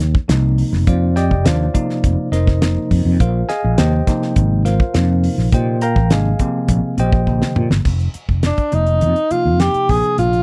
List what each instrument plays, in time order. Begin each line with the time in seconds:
Already playing: fretless electric bass D#2
0.00 snare, closed hi-hat
0.15 kick
0.29 fretless electric bass C2, tine electric piano C3 F3 A#3 D#4, snare, closed hi-hat
0.58 open hi-hat
0.73 fretless electric bass F1, snare
0.87 fretless electric bass F2, tine electric piano F4 C5 D5 F5, kick, closed hi-hat
1.16 tine electric piano G4 D5 D#5 G5, snare, closed hi-hat
1.31 fretless electric bass F1, kick
1.45 fretless electric bass D#2, tine electric piano C3 F3 A#3 D4 F4 C5 D5 F5, snare, closed hi-hat
1.74 tine electric piano C3 F3 A#3 D#4, kick, closed hi-hat
1.90 snare
2.04 fretless electric bass F1, kick, closed hi-hat
2.32 fretless electric bass F1, tine electric piano D#4 A#4 C5 D#5, snare, closed hi-hat
2.47 kick, snare
2.61 tine electric piano C3 F3 A#3 D#4, snare, closed hi-hat
2.91 fretless electric bass F2, kick, open hi-hat
3.05 fretless electric bass F2
3.20 fretless electric bass A#1, tine electric piano F4 A#4 C5 F5, kick, closed hi-hat
3.49 tine electric piano G#4 D#5 F5 G#5, snare, closed hi-hat
3.64 fretless electric bass A#1
3.78 fretless electric bass D#2, tine electric piano C3 F3 A#3 D#4 G4 C5 D#5 G5, snare, closed hi-hat
4.07 tine electric piano C3 F3 A#3 D#4, kick, snare, closed hi-hat
4.22 snare
4.36 fretless electric bass G#1, kick, closed hi-hat
4.65 tine electric piano F4 A#4 C5 F5, snare, closed hi-hat
4.80 kick
4.94 fretless electric bass F2, tine electric piano C3 F3 A#3 D#4, snare, closed hi-hat
5.24 open hi-hat
5.38 fretless electric bass A#1, snare
5.52 fretless electric bass A#2, tine electric piano G4 C5 D#5 G5, kick, closed hi-hat
5.81 tine electric piano A#4 F5 G5 A#5, closed hi-hat
5.96 fretless electric bass A#1, kick
6.10 fretless electric bass G#1, tine electric piano C3 F3 A#3 D4 G#4 D#5 F5 G#5, snare, closed hi-hat
6.39 tine electric piano C3 F3 A#3 C4, kick, closed hi-hat
6.68 fretless electric bass A#1, kick, closed hi-hat
6.98 fretless electric bass A#1, tine electric piano G4 C5 D#5 G5, closed hi-hat
7.12 kick
7.27 tine electric piano C3 D3 F3 A#3, kick
7.42 snare
7.56 fretless electric bass A#2, mid tom
7.70 fretless electric bass G1, snare
7.85 fretless electric bass F1, kick, crash
7.99 closed hi-hat
8.14 muted fretless electric bass stroke, closed hi-hat
8.29 fretless electric bass F1, kick
8.43 alto saxophone D4, snare, closed hi-hat
8.57 kick, closed hi-hat
8.72 fretless electric bass F1, tine electric piano C3 F3 A#3 D#4, alto saxophone D#4, closed hi-hat
8.87 closed hi-hat
9.01 fretless electric bass F2, closed hi-hat
9.16 closed hi-hat
9.31 tine electric piano C3 F3 A#3 D#4, alto saxophone F4, muted fretless electric bass stroke, closed hi-hat
9.46 fretless electric bass F2
9.60 alto saxophone G4, snare, closed hi-hat
9.74 muted fretless electric bass stroke, closed hi-hat
9.89 fretless electric bass A#1, tine electric piano C3 F3 A#3 D4, alto saxophone G#4, kick, open hi-hat
10.04 closed hi-hat
10.18 fretless electric bass A#1, alto saxophone F4, closed hi-hat
10.33 closed hi-hat